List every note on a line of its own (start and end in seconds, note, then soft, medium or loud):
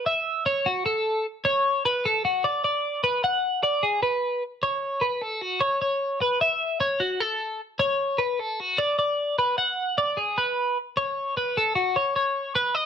0.06 0.46 E5 medium
0.46 0.66 C#5 medium
0.66 0.85 F#4 medium
0.86 1.26 A4 medium
1.45 1.85 C#5 medium
1.85 2.05 B4 medium
2.05 2.24 A4 medium
2.25 2.45 F#4 medium
2.44 2.63 D5 medium
2.64 3.03 D5 medium
3.04 3.24 B4 medium
3.24 3.63 F#5 medium
3.63 3.83 D5 medium
3.83 4.02 G#4 medium
4.03 4.43 B4 medium
4.63 5.02 C#5 medium
5.01 5.22 B4 medium
5.22 5.41 A4 medium
5.41 5.62 F#4 medium
5.61 5.80 C#5 medium
5.82 6.21 C#5 medium
6.22 6.41 B4 medium
6.41 6.80 E5 medium
6.80 7.00 C#5 medium
7.00 7.21 F#4 medium
7.21 7.60 A4 medium
7.79 8.19 C#5 medium
8.18 8.39 B4 medium
8.39 8.60 A4 medium
8.60 8.79 F#4 medium
8.78 8.97 D5 medium
8.99 9.38 D5 medium
9.39 9.58 B4 medium
9.58 9.98 F#5 medium
9.98 10.18 D5 medium
10.17 10.37 G#4 medium
10.38 10.77 B4 medium
10.97 11.37 C#5 medium
11.37 11.57 B4 medium
11.57 11.75 A4 medium
11.75 11.96 F#4 medium
11.96 12.15 C#5 medium
12.16 12.55 C#5 medium
12.55 12.75 B4 medium
12.75 12.86 D#5 medium